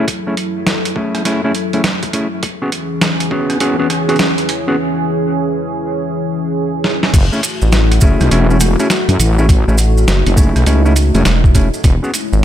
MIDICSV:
0, 0, Header, 1, 6, 480
1, 0, Start_track
1, 0, Tempo, 588235
1, 64, Time_signature, 4, 2, 24, 8
1, 10155, End_track
2, 0, Start_track
2, 0, Title_t, "Analog synth pad"
2, 0, Program_c, 0, 89
2, 0, Note_on_c, 0, 54, 74
2, 0, Note_on_c, 0, 64, 68
2, 0, Note_on_c, 0, 69, 80
2, 1951, Note_off_c, 0, 54, 0
2, 1951, Note_off_c, 0, 64, 0
2, 1951, Note_off_c, 0, 69, 0
2, 1984, Note_on_c, 0, 52, 77
2, 1984, Note_on_c, 0, 61, 70
2, 1986, Note_on_c, 0, 68, 87
2, 5792, Note_off_c, 0, 52, 0
2, 5792, Note_off_c, 0, 61, 0
2, 5792, Note_off_c, 0, 68, 0
2, 5824, Note_on_c, 0, 57, 77
2, 5824, Note_on_c, 0, 64, 72
2, 5825, Note_on_c, 0, 66, 86
2, 7725, Note_off_c, 0, 64, 0
2, 7744, Note_on_c, 0, 63, 72
2, 9631, Note_off_c, 0, 57, 0
2, 9632, Note_off_c, 0, 66, 0
2, 9645, Note_off_c, 0, 63, 0
2, 9663, Note_on_c, 0, 56, 79
2, 9664, Note_on_c, 0, 61, 72
2, 9665, Note_on_c, 0, 64, 86
2, 10155, Note_off_c, 0, 56, 0
2, 10155, Note_off_c, 0, 61, 0
2, 10155, Note_off_c, 0, 64, 0
2, 10155, End_track
3, 0, Start_track
3, 0, Title_t, "Clean electric guitar"
3, 0, Program_c, 1, 27
3, 217, Note_on_c, 1, 57, 73
3, 220, Note_on_c, 1, 61, 68
3, 223, Note_on_c, 1, 68, 83
3, 227, Note_on_c, 1, 64, 68
3, 277, Note_off_c, 1, 61, 0
3, 278, Note_off_c, 1, 57, 0
3, 278, Note_off_c, 1, 64, 0
3, 278, Note_off_c, 1, 68, 0
3, 784, Note_on_c, 1, 57, 73
3, 787, Note_on_c, 1, 61, 67
3, 789, Note_on_c, 1, 68, 82
3, 791, Note_on_c, 1, 64, 67
3, 1004, Note_off_c, 1, 57, 0
3, 1004, Note_off_c, 1, 61, 0
3, 1004, Note_off_c, 1, 64, 0
3, 1004, Note_off_c, 1, 68, 0
3, 1023, Note_on_c, 1, 57, 76
3, 1025, Note_on_c, 1, 61, 70
3, 1029, Note_on_c, 1, 68, 81
3, 1031, Note_on_c, 1, 64, 70
3, 1155, Note_off_c, 1, 57, 0
3, 1155, Note_off_c, 1, 61, 0
3, 1155, Note_off_c, 1, 64, 0
3, 1155, Note_off_c, 1, 68, 0
3, 1175, Note_on_c, 1, 57, 79
3, 1178, Note_on_c, 1, 61, 74
3, 1179, Note_on_c, 1, 68, 89
3, 1181, Note_on_c, 1, 64, 73
3, 1236, Note_off_c, 1, 57, 0
3, 1236, Note_off_c, 1, 64, 0
3, 1237, Note_off_c, 1, 61, 0
3, 1237, Note_off_c, 1, 68, 0
3, 1417, Note_on_c, 1, 57, 74
3, 1417, Note_on_c, 1, 61, 66
3, 1419, Note_on_c, 1, 68, 80
3, 1422, Note_on_c, 1, 64, 67
3, 1477, Note_off_c, 1, 57, 0
3, 1477, Note_off_c, 1, 61, 0
3, 1477, Note_off_c, 1, 64, 0
3, 1477, Note_off_c, 1, 68, 0
3, 1742, Note_on_c, 1, 57, 73
3, 1745, Note_on_c, 1, 61, 68
3, 1749, Note_on_c, 1, 68, 82
3, 1753, Note_on_c, 1, 64, 67
3, 1849, Note_off_c, 1, 57, 0
3, 1849, Note_off_c, 1, 61, 0
3, 1849, Note_off_c, 1, 64, 0
3, 1849, Note_off_c, 1, 68, 0
3, 2136, Note_on_c, 1, 61, 71
3, 2136, Note_on_c, 1, 66, 69
3, 2138, Note_on_c, 1, 68, 85
3, 2139, Note_on_c, 1, 59, 79
3, 2196, Note_off_c, 1, 59, 0
3, 2196, Note_off_c, 1, 66, 0
3, 2196, Note_off_c, 1, 68, 0
3, 2197, Note_off_c, 1, 61, 0
3, 2699, Note_on_c, 1, 61, 81
3, 2702, Note_on_c, 1, 66, 82
3, 2706, Note_on_c, 1, 68, 96
3, 2710, Note_on_c, 1, 59, 90
3, 2922, Note_off_c, 1, 66, 0
3, 2923, Note_off_c, 1, 59, 0
3, 2923, Note_off_c, 1, 61, 0
3, 2923, Note_off_c, 1, 68, 0
3, 2942, Note_on_c, 1, 61, 90
3, 2944, Note_on_c, 1, 66, 91
3, 2946, Note_on_c, 1, 68, 107
3, 2949, Note_on_c, 1, 59, 96
3, 3074, Note_off_c, 1, 59, 0
3, 3074, Note_off_c, 1, 61, 0
3, 3074, Note_off_c, 1, 66, 0
3, 3074, Note_off_c, 1, 68, 0
3, 3093, Note_on_c, 1, 61, 70
3, 3095, Note_on_c, 1, 66, 70
3, 3095, Note_on_c, 1, 68, 85
3, 3097, Note_on_c, 1, 59, 77
3, 3155, Note_off_c, 1, 59, 0
3, 3155, Note_off_c, 1, 61, 0
3, 3155, Note_off_c, 1, 66, 0
3, 3155, Note_off_c, 1, 68, 0
3, 3332, Note_on_c, 1, 61, 85
3, 3336, Note_on_c, 1, 66, 85
3, 3339, Note_on_c, 1, 68, 101
3, 3342, Note_on_c, 1, 59, 93
3, 3395, Note_off_c, 1, 59, 0
3, 3395, Note_off_c, 1, 66, 0
3, 3395, Note_off_c, 1, 68, 0
3, 3396, Note_off_c, 1, 61, 0
3, 3815, Note_on_c, 1, 61, 76
3, 3817, Note_on_c, 1, 66, 79
3, 3819, Note_on_c, 1, 68, 93
3, 3821, Note_on_c, 1, 59, 87
3, 3876, Note_off_c, 1, 59, 0
3, 3876, Note_off_c, 1, 61, 0
3, 3876, Note_off_c, 1, 66, 0
3, 3876, Note_off_c, 1, 68, 0
3, 5976, Note_on_c, 1, 57, 76
3, 5978, Note_on_c, 1, 61, 72
3, 5979, Note_on_c, 1, 68, 86
3, 5983, Note_on_c, 1, 64, 73
3, 6037, Note_off_c, 1, 57, 0
3, 6037, Note_off_c, 1, 61, 0
3, 6037, Note_off_c, 1, 64, 0
3, 6037, Note_off_c, 1, 68, 0
3, 6543, Note_on_c, 1, 57, 89
3, 6546, Note_on_c, 1, 61, 80
3, 6548, Note_on_c, 1, 68, 100
3, 6552, Note_on_c, 1, 64, 83
3, 6764, Note_off_c, 1, 57, 0
3, 6764, Note_off_c, 1, 61, 0
3, 6764, Note_off_c, 1, 64, 0
3, 6764, Note_off_c, 1, 68, 0
3, 6781, Note_on_c, 1, 57, 97
3, 6783, Note_on_c, 1, 61, 90
3, 6787, Note_on_c, 1, 68, 107
3, 6790, Note_on_c, 1, 64, 90
3, 6913, Note_off_c, 1, 61, 0
3, 6913, Note_off_c, 1, 68, 0
3, 6914, Note_off_c, 1, 57, 0
3, 6914, Note_off_c, 1, 64, 0
3, 6936, Note_on_c, 1, 57, 74
3, 6938, Note_on_c, 1, 61, 70
3, 6941, Note_on_c, 1, 68, 84
3, 6943, Note_on_c, 1, 64, 71
3, 6997, Note_off_c, 1, 57, 0
3, 6997, Note_off_c, 1, 61, 0
3, 6997, Note_off_c, 1, 64, 0
3, 6997, Note_off_c, 1, 68, 0
3, 7176, Note_on_c, 1, 57, 92
3, 7178, Note_on_c, 1, 61, 83
3, 7179, Note_on_c, 1, 68, 99
3, 7180, Note_on_c, 1, 64, 85
3, 7236, Note_off_c, 1, 64, 0
3, 7237, Note_off_c, 1, 57, 0
3, 7237, Note_off_c, 1, 61, 0
3, 7237, Note_off_c, 1, 68, 0
3, 7657, Note_on_c, 1, 57, 85
3, 7659, Note_on_c, 1, 61, 77
3, 7661, Note_on_c, 1, 68, 94
3, 7663, Note_on_c, 1, 64, 78
3, 7717, Note_off_c, 1, 57, 0
3, 7717, Note_off_c, 1, 61, 0
3, 7718, Note_off_c, 1, 64, 0
3, 7718, Note_off_c, 1, 68, 0
3, 7898, Note_on_c, 1, 57, 77
3, 7899, Note_on_c, 1, 61, 73
3, 7900, Note_on_c, 1, 68, 87
3, 7901, Note_on_c, 1, 64, 71
3, 7957, Note_off_c, 1, 57, 0
3, 7957, Note_off_c, 1, 61, 0
3, 7957, Note_off_c, 1, 68, 0
3, 7958, Note_off_c, 1, 64, 0
3, 8464, Note_on_c, 1, 57, 75
3, 8465, Note_on_c, 1, 61, 69
3, 8465, Note_on_c, 1, 68, 84
3, 8467, Note_on_c, 1, 64, 70
3, 8683, Note_off_c, 1, 57, 0
3, 8683, Note_off_c, 1, 61, 0
3, 8683, Note_off_c, 1, 68, 0
3, 8684, Note_off_c, 1, 64, 0
3, 8704, Note_on_c, 1, 57, 79
3, 8705, Note_on_c, 1, 61, 73
3, 8707, Note_on_c, 1, 68, 87
3, 8708, Note_on_c, 1, 64, 72
3, 8835, Note_off_c, 1, 57, 0
3, 8835, Note_off_c, 1, 61, 0
3, 8835, Note_off_c, 1, 64, 0
3, 8835, Note_off_c, 1, 68, 0
3, 8853, Note_on_c, 1, 57, 82
3, 8856, Note_on_c, 1, 61, 75
3, 8860, Note_on_c, 1, 68, 91
3, 8863, Note_on_c, 1, 64, 75
3, 8916, Note_off_c, 1, 57, 0
3, 8916, Note_off_c, 1, 61, 0
3, 8916, Note_off_c, 1, 64, 0
3, 8916, Note_off_c, 1, 68, 0
3, 9095, Note_on_c, 1, 57, 74
3, 9097, Note_on_c, 1, 61, 68
3, 9100, Note_on_c, 1, 68, 81
3, 9102, Note_on_c, 1, 64, 68
3, 9156, Note_off_c, 1, 57, 0
3, 9156, Note_off_c, 1, 61, 0
3, 9156, Note_off_c, 1, 64, 0
3, 9157, Note_off_c, 1, 68, 0
3, 9422, Note_on_c, 1, 57, 79
3, 9424, Note_on_c, 1, 61, 69
3, 9428, Note_on_c, 1, 68, 84
3, 9430, Note_on_c, 1, 64, 71
3, 9528, Note_off_c, 1, 61, 0
3, 9529, Note_off_c, 1, 57, 0
3, 9529, Note_off_c, 1, 64, 0
3, 9529, Note_off_c, 1, 68, 0
3, 9813, Note_on_c, 1, 61, 72
3, 9815, Note_on_c, 1, 66, 74
3, 9821, Note_on_c, 1, 68, 90
3, 9825, Note_on_c, 1, 59, 78
3, 9876, Note_off_c, 1, 59, 0
3, 9876, Note_off_c, 1, 61, 0
3, 9876, Note_off_c, 1, 66, 0
3, 9876, Note_off_c, 1, 68, 0
3, 10155, End_track
4, 0, Start_track
4, 0, Title_t, "Analog synth bass"
4, 0, Program_c, 2, 38
4, 6219, Note_on_c, 2, 33, 97
4, 6531, Note_off_c, 2, 33, 0
4, 6544, Note_on_c, 2, 30, 96
4, 6673, Note_off_c, 2, 30, 0
4, 7897, Note_on_c, 2, 33, 95
4, 8210, Note_off_c, 2, 33, 0
4, 8222, Note_on_c, 2, 30, 99
4, 8351, Note_off_c, 2, 30, 0
4, 8704, Note_on_c, 2, 37, 97
4, 9072, Note_off_c, 2, 37, 0
4, 9185, Note_on_c, 2, 28, 96
4, 9553, Note_off_c, 2, 28, 0
4, 10058, Note_on_c, 2, 32, 96
4, 10155, Note_off_c, 2, 32, 0
4, 10155, End_track
5, 0, Start_track
5, 0, Title_t, "Wobble bass"
5, 0, Program_c, 3, 39
5, 5823, Note_on_c, 3, 30, 99
5, 5952, Note_off_c, 3, 30, 0
5, 6696, Note_on_c, 3, 35, 97
5, 6770, Note_off_c, 3, 35, 0
5, 6782, Note_on_c, 3, 28, 100
5, 7151, Note_off_c, 3, 28, 0
5, 7414, Note_on_c, 3, 42, 94
5, 7489, Note_off_c, 3, 42, 0
5, 7502, Note_on_c, 3, 33, 99
5, 7872, Note_off_c, 3, 33, 0
5, 8375, Note_on_c, 3, 30, 100
5, 8592, Note_off_c, 3, 30, 0
5, 8614, Note_on_c, 3, 35, 98
5, 8689, Note_off_c, 3, 35, 0
5, 9094, Note_on_c, 3, 28, 102
5, 9169, Note_off_c, 3, 28, 0
5, 9661, Note_on_c, 3, 28, 99
5, 9791, Note_off_c, 3, 28, 0
5, 10155, End_track
6, 0, Start_track
6, 0, Title_t, "Drums"
6, 63, Note_on_c, 9, 36, 118
6, 65, Note_on_c, 9, 42, 81
6, 144, Note_off_c, 9, 36, 0
6, 146, Note_off_c, 9, 42, 0
6, 304, Note_on_c, 9, 42, 65
6, 386, Note_off_c, 9, 42, 0
6, 543, Note_on_c, 9, 38, 119
6, 543, Note_on_c, 9, 42, 79
6, 625, Note_off_c, 9, 38, 0
6, 625, Note_off_c, 9, 42, 0
6, 697, Note_on_c, 9, 42, 68
6, 778, Note_off_c, 9, 42, 0
6, 782, Note_on_c, 9, 36, 107
6, 863, Note_off_c, 9, 36, 0
6, 936, Note_on_c, 9, 37, 37
6, 936, Note_on_c, 9, 42, 39
6, 1017, Note_off_c, 9, 37, 0
6, 1017, Note_off_c, 9, 42, 0
6, 1022, Note_on_c, 9, 38, 36
6, 1022, Note_on_c, 9, 42, 81
6, 1104, Note_off_c, 9, 38, 0
6, 1104, Note_off_c, 9, 42, 0
6, 1262, Note_on_c, 9, 42, 67
6, 1343, Note_off_c, 9, 42, 0
6, 1414, Note_on_c, 9, 42, 39
6, 1496, Note_off_c, 9, 42, 0
6, 1501, Note_on_c, 9, 38, 120
6, 1501, Note_on_c, 9, 42, 78
6, 1582, Note_off_c, 9, 38, 0
6, 1582, Note_off_c, 9, 42, 0
6, 1654, Note_on_c, 9, 36, 109
6, 1654, Note_on_c, 9, 42, 60
6, 1735, Note_off_c, 9, 42, 0
6, 1736, Note_off_c, 9, 36, 0
6, 1741, Note_on_c, 9, 42, 67
6, 1742, Note_on_c, 9, 36, 64
6, 1823, Note_off_c, 9, 36, 0
6, 1823, Note_off_c, 9, 42, 0
6, 1981, Note_on_c, 9, 42, 80
6, 1982, Note_on_c, 9, 36, 125
6, 2062, Note_off_c, 9, 42, 0
6, 2063, Note_off_c, 9, 36, 0
6, 2221, Note_on_c, 9, 42, 66
6, 2303, Note_off_c, 9, 42, 0
6, 2460, Note_on_c, 9, 38, 125
6, 2460, Note_on_c, 9, 42, 81
6, 2542, Note_off_c, 9, 38, 0
6, 2542, Note_off_c, 9, 42, 0
6, 2614, Note_on_c, 9, 42, 65
6, 2696, Note_off_c, 9, 42, 0
6, 2702, Note_on_c, 9, 36, 111
6, 2783, Note_off_c, 9, 36, 0
6, 2854, Note_on_c, 9, 37, 36
6, 2854, Note_on_c, 9, 42, 39
6, 2936, Note_off_c, 9, 37, 0
6, 2936, Note_off_c, 9, 42, 0
6, 2941, Note_on_c, 9, 42, 79
6, 3022, Note_off_c, 9, 42, 0
6, 3182, Note_on_c, 9, 37, 38
6, 3182, Note_on_c, 9, 42, 68
6, 3264, Note_off_c, 9, 37, 0
6, 3264, Note_off_c, 9, 42, 0
6, 3337, Note_on_c, 9, 42, 36
6, 3343, Note_off_c, 9, 42, 0
6, 3343, Note_on_c, 9, 42, 29
6, 3394, Note_off_c, 9, 42, 0
6, 3394, Note_on_c, 9, 42, 24
6, 3421, Note_off_c, 9, 42, 0
6, 3421, Note_on_c, 9, 38, 125
6, 3421, Note_on_c, 9, 42, 80
6, 3503, Note_off_c, 9, 38, 0
6, 3503, Note_off_c, 9, 42, 0
6, 3503, Note_on_c, 9, 42, 13
6, 3575, Note_off_c, 9, 42, 0
6, 3575, Note_on_c, 9, 42, 61
6, 3656, Note_off_c, 9, 42, 0
6, 3662, Note_on_c, 9, 42, 67
6, 3744, Note_off_c, 9, 42, 0
6, 5583, Note_on_c, 9, 38, 63
6, 5665, Note_off_c, 9, 38, 0
6, 5737, Note_on_c, 9, 38, 74
6, 5818, Note_off_c, 9, 38, 0
6, 5824, Note_on_c, 9, 36, 122
6, 5824, Note_on_c, 9, 42, 87
6, 5824, Note_on_c, 9, 49, 107
6, 5827, Note_on_c, 9, 70, 56
6, 5905, Note_off_c, 9, 36, 0
6, 5905, Note_off_c, 9, 42, 0
6, 5905, Note_off_c, 9, 49, 0
6, 5909, Note_off_c, 9, 70, 0
6, 5979, Note_on_c, 9, 70, 26
6, 6061, Note_off_c, 9, 70, 0
6, 6064, Note_on_c, 9, 42, 72
6, 6068, Note_on_c, 9, 70, 86
6, 6145, Note_off_c, 9, 42, 0
6, 6150, Note_off_c, 9, 70, 0
6, 6214, Note_on_c, 9, 70, 40
6, 6296, Note_off_c, 9, 70, 0
6, 6300, Note_on_c, 9, 70, 49
6, 6304, Note_on_c, 9, 38, 123
6, 6304, Note_on_c, 9, 42, 83
6, 6382, Note_off_c, 9, 70, 0
6, 6386, Note_off_c, 9, 38, 0
6, 6386, Note_off_c, 9, 42, 0
6, 6459, Note_on_c, 9, 42, 69
6, 6459, Note_on_c, 9, 70, 26
6, 6535, Note_off_c, 9, 70, 0
6, 6535, Note_on_c, 9, 70, 86
6, 6541, Note_off_c, 9, 42, 0
6, 6544, Note_on_c, 9, 36, 105
6, 6617, Note_off_c, 9, 70, 0
6, 6625, Note_off_c, 9, 36, 0
6, 6695, Note_on_c, 9, 70, 40
6, 6698, Note_on_c, 9, 37, 41
6, 6698, Note_on_c, 9, 42, 39
6, 6777, Note_off_c, 9, 70, 0
6, 6780, Note_off_c, 9, 37, 0
6, 6780, Note_off_c, 9, 42, 0
6, 6784, Note_on_c, 9, 42, 80
6, 6784, Note_on_c, 9, 70, 49
6, 6866, Note_off_c, 9, 42, 0
6, 6866, Note_off_c, 9, 70, 0
6, 6940, Note_on_c, 9, 70, 24
6, 7019, Note_off_c, 9, 70, 0
6, 7019, Note_on_c, 9, 70, 95
6, 7023, Note_on_c, 9, 37, 41
6, 7023, Note_on_c, 9, 42, 69
6, 7101, Note_off_c, 9, 70, 0
6, 7104, Note_off_c, 9, 37, 0
6, 7104, Note_off_c, 9, 42, 0
6, 7176, Note_on_c, 9, 70, 45
6, 7177, Note_on_c, 9, 42, 39
6, 7258, Note_off_c, 9, 70, 0
6, 7259, Note_off_c, 9, 42, 0
6, 7262, Note_on_c, 9, 38, 120
6, 7262, Note_on_c, 9, 42, 83
6, 7266, Note_on_c, 9, 70, 50
6, 7344, Note_off_c, 9, 38, 0
6, 7344, Note_off_c, 9, 42, 0
6, 7348, Note_off_c, 9, 70, 0
6, 7416, Note_on_c, 9, 42, 63
6, 7417, Note_on_c, 9, 70, 28
6, 7498, Note_off_c, 9, 42, 0
6, 7499, Note_off_c, 9, 70, 0
6, 7504, Note_on_c, 9, 42, 69
6, 7508, Note_on_c, 9, 70, 92
6, 7586, Note_off_c, 9, 42, 0
6, 7589, Note_off_c, 9, 70, 0
6, 7657, Note_on_c, 9, 70, 41
6, 7739, Note_off_c, 9, 70, 0
6, 7744, Note_on_c, 9, 36, 120
6, 7745, Note_on_c, 9, 42, 85
6, 7746, Note_on_c, 9, 70, 57
6, 7825, Note_off_c, 9, 36, 0
6, 7827, Note_off_c, 9, 42, 0
6, 7828, Note_off_c, 9, 70, 0
6, 7903, Note_on_c, 9, 70, 29
6, 7978, Note_off_c, 9, 70, 0
6, 7978, Note_on_c, 9, 70, 96
6, 7985, Note_on_c, 9, 42, 70
6, 8060, Note_off_c, 9, 70, 0
6, 8066, Note_off_c, 9, 42, 0
6, 8139, Note_on_c, 9, 70, 39
6, 8221, Note_off_c, 9, 70, 0
6, 8224, Note_on_c, 9, 38, 126
6, 8224, Note_on_c, 9, 42, 85
6, 8225, Note_on_c, 9, 70, 58
6, 8306, Note_off_c, 9, 38, 0
6, 8306, Note_off_c, 9, 42, 0
6, 8306, Note_off_c, 9, 70, 0
6, 8373, Note_on_c, 9, 70, 26
6, 8376, Note_on_c, 9, 42, 70
6, 8455, Note_off_c, 9, 70, 0
6, 8458, Note_off_c, 9, 42, 0
6, 8463, Note_on_c, 9, 36, 108
6, 8464, Note_on_c, 9, 70, 94
6, 8545, Note_off_c, 9, 36, 0
6, 8546, Note_off_c, 9, 70, 0
6, 8616, Note_on_c, 9, 37, 39
6, 8616, Note_on_c, 9, 42, 40
6, 8618, Note_on_c, 9, 70, 43
6, 8698, Note_off_c, 9, 37, 0
6, 8698, Note_off_c, 9, 42, 0
6, 8700, Note_off_c, 9, 70, 0
6, 8702, Note_on_c, 9, 42, 82
6, 8704, Note_on_c, 9, 70, 57
6, 8784, Note_off_c, 9, 42, 0
6, 8786, Note_off_c, 9, 70, 0
6, 8860, Note_on_c, 9, 70, 26
6, 8941, Note_off_c, 9, 70, 0
6, 8944, Note_on_c, 9, 42, 69
6, 8945, Note_on_c, 9, 70, 90
6, 9026, Note_off_c, 9, 42, 0
6, 9027, Note_off_c, 9, 70, 0
6, 9094, Note_on_c, 9, 70, 40
6, 9097, Note_on_c, 9, 42, 40
6, 9176, Note_off_c, 9, 70, 0
6, 9178, Note_off_c, 9, 42, 0
6, 9182, Note_on_c, 9, 38, 124
6, 9182, Note_on_c, 9, 42, 84
6, 9185, Note_on_c, 9, 70, 54
6, 9264, Note_off_c, 9, 38, 0
6, 9264, Note_off_c, 9, 42, 0
6, 9267, Note_off_c, 9, 70, 0
6, 9336, Note_on_c, 9, 36, 115
6, 9344, Note_on_c, 9, 70, 27
6, 9417, Note_off_c, 9, 36, 0
6, 9422, Note_on_c, 9, 36, 63
6, 9422, Note_on_c, 9, 42, 70
6, 9423, Note_off_c, 9, 70, 0
6, 9423, Note_on_c, 9, 70, 95
6, 9504, Note_off_c, 9, 36, 0
6, 9504, Note_off_c, 9, 42, 0
6, 9504, Note_off_c, 9, 70, 0
6, 9578, Note_on_c, 9, 70, 43
6, 9659, Note_off_c, 9, 70, 0
6, 9662, Note_on_c, 9, 42, 83
6, 9662, Note_on_c, 9, 70, 58
6, 9663, Note_on_c, 9, 36, 124
6, 9743, Note_off_c, 9, 70, 0
6, 9744, Note_off_c, 9, 36, 0
6, 9744, Note_off_c, 9, 42, 0
6, 9824, Note_on_c, 9, 70, 27
6, 9903, Note_on_c, 9, 42, 69
6, 9905, Note_off_c, 9, 70, 0
6, 9909, Note_on_c, 9, 70, 93
6, 9985, Note_off_c, 9, 42, 0
6, 9991, Note_off_c, 9, 70, 0
6, 10060, Note_on_c, 9, 70, 38
6, 10142, Note_off_c, 9, 70, 0
6, 10155, End_track
0, 0, End_of_file